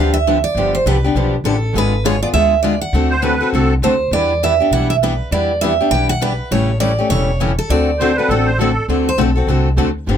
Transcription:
Already playing: upright bass D2, steel-string acoustic guitar D3 F5
0.00 steel-string acoustic guitar F3 B3 D4 G4
0.14 steel-string acoustic guitar E5
0.27 steel-string acoustic guitar D3 F3 B3 D4 G4
0.44 steel-string acoustic guitar D5
0.55 upright bass G1, steel-string acoustic guitar D3 F3 B3 D4 G4
0.75 steel-string acoustic guitar C5
0.86 upright bass C2, steel-string acoustic guitar D3 F3 B3 D4 G4 B4
1.04 steel-string acoustic guitar B3 D4 G4
1.15 upright bass B1, steel-string acoustic guitar D3 F3 B3 D4 G4
1.44 upright bass A1, steel-string acoustic guitar D3 F3 B3 D4 G4 A4
1.74 upright bass G#1, steel-string acoustic guitar D3 G#3 B3 F4 G#4 B4
2.05 steel-string acoustic guitar D3 G#3 B3 F4 G#4 C#5
2.23 steel-string acoustic guitar B3 F4 G#4 D5
2.33 upright bass D2, steel-string acoustic guitar D3 G#3 B3 F4 G#4 E5
2.63 steel-string acoustic guitar D3 G#3 B3 F4 G#4 D5
2.81 steel-string acoustic guitar F#5
2.93 upright bass D2, steel-string acoustic guitar D3 A3 C4 F#4 A4
3.10 accordion C5
3.22 steel-string acoustic guitar D3 A3 C4 F#4 A4, accordion B4
3.41 steel-string acoustic guitar C4 F#4 A4
3.53 upright bass C2, steel-string acoustic guitar D3 A3 C4 F#4 A4, accordion A4
3.82 upright bass D2, steel-string acoustic guitar D3 A3 C4 F#4 A4 C5
4.11 upright bass E2, steel-string acoustic guitar E3 G3 B3 D4 G4 D5
4.15 steel-string acoustic guitar E4 B4
4.43 steel-string acoustic guitar E3 G3 B3 D4 E4 G4 B4 E5
4.60 steel-string acoustic guitar B3 D4 G4
4.71 upright bass B1, steel-string acoustic guitar E3 G3 B3 D4 E4 G4 B4 F#5
4.90 steel-string acoustic guitar E5
5.02 steel-string acoustic guitar E3 G3 B3 D4 E4 G4 B4
5.31 upright bass E2, steel-string acoustic guitar E3 G3 B3 D4 E4 G4 B4 D5
5.61 steel-string acoustic guitar E3 G3 B3 D4 E4 G4 B4 E5
5.81 steel-string acoustic guitar B3 D4 G4
5.91 upright bass B1, steel-string acoustic guitar E3 G3 B3 D4 E4 G4 B4 G5
6.09 steel-string acoustic guitar F#5
6.21 steel-string acoustic guitar E3 G3 B3 D4 E4 G4 B4
6.51 upright bass A1, steel-string acoustic guitar C#3 E3 G3 A3 C#4 E4 G4 A4 C#5
6.80 steel-string acoustic guitar C#3 E3 G3 A3 C#4 E4 G4 A4 D5
6.99 steel-string acoustic guitar A3 C#4 G4
7.10 upright bass E1, steel-string acoustic guitar C#3 E3 G3 A3 C#4 E4 G4 A4 C#5
7.40 steel-string acoustic guitar C#3 E3 G3 A3 C#4 E4 G4 A4
7.59 steel-string acoustic guitar A4
7.69 upright bass D2, steel-string acoustic guitar D3 A3 C4 F#4 A4 D5
7.99 steel-string acoustic guitar D3 A3 C4 F#4 A4, accordion C5
8.17 steel-string acoustic guitar C4 F#4 A4, accordion B4
8.28 upright bass A1, steel-string acoustic guitar D3 A3 C4 F#4 A4, accordion A4
8.46 accordion C5
8.58 steel-string acoustic guitar D3 A3 C4 F#4 A4, accordion A4
8.88 upright bass D2, steel-string acoustic guitar D3 A3 C4 F#4 A4
9.09 steel-string acoustic guitar C5
9.18 upright bass B1, steel-string acoustic guitar D3 A3 C4 F#4 A4
9.36 steel-string acoustic guitar C4 F#4 A4
9.47 upright bass C2, steel-string acoustic guitar D3 A3 C4 F#4 A4
9.77 upright bass D2, steel-string acoustic guitar D3 A3 C4 F#4 A4
10.07 upright bass G1, steel-string acoustic guitar D3 F3 B3 D4 G4

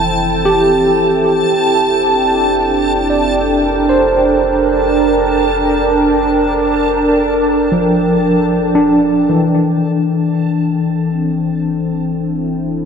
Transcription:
Already playing: sub bass F1, tine electric piano E3, analog synth pad C4 E4 A4 G5, synth texture A5
0.45 tine electric piano G4
1.50 sub bass F1
2.06 analog synth pad D4
3.10 tine electric piano D5
3.45 analog synth pad A#4
3.89 tine electric piano C5
7.72 tine electric piano F3
8.75 tine electric piano D4
9.29 tine electric piano E3
9.91 sub bass F1
10.97 analog synth pad C4
12.19 analog synth pad E4

